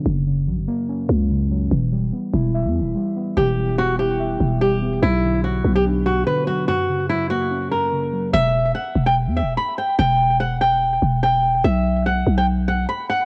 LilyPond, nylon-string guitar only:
\new Staff \with { instrumentName = "Nylon-string guitar" } { \time 4/4 \key e \dorian \tempo 4 = 145 r1 | r1 | g'4 fis'8 g'4. g'4 | e'4 fis'8. g'16 r8 fis'8 b'8 fis'8 |
fis'4 e'8 fis'4 ais'4. | e''4 fis''8. g''16 r8 e''8 b''8 g''8 | g''4 fis''8 g''4. g''4 | e''4 fis''8. g''16 r8 fis''8 b''8 fis''8 | }